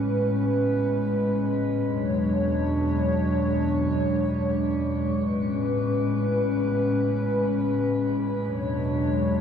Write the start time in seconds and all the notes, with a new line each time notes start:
Already playing: A2 G#3 C#4 B4
1.86 E2 B2 F#3 D4 C#5
5.15 A2 C#4 B4
8.44 E2 B2 F#3 G#3 D4 C#5